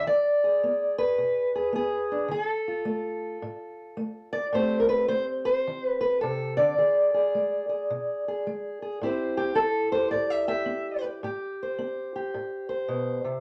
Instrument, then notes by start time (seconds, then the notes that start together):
steel-string acoustic guitar
0.07 E3 D5
0.44 G#4
0.64 B3
0.98 B4
1.18 B2
1.55 G#4
1.73 B3 G#4
2.12 D4
2.28 D3 G#4
2.42 A4
2.68 F4
2.85 A3
3.42 A2
3.97 A3
4.33 D5
4.53 A2 A3 C4 G4 C5
4.80 A#4
4.89 B4
5.08 A3 C5
5.45 C5
5.67 E3
5.85 B4
6.01 B4
6.21 C3 A4
6.57 D3 D5
6.78 E3 G#4
7.14 G#4
7.35 G#3
7.69 G#4
7.90 B2
8.28 G#4
8.47 G#3
8.82 G#4
9.01 A2 C4 E4 G4
9.06 C5
9.37 G4
9.55 C4 A4
9.92 G4 C5
10.11 A2 D5
10.30 E5
10.48 G4 E5
10.66 C4
11.04 G4
11.23 A2 G4
11.63 C5
11.79 C4
12.16 G4
12.34 A2
12.69 C5
12.88 B2
13.24 C3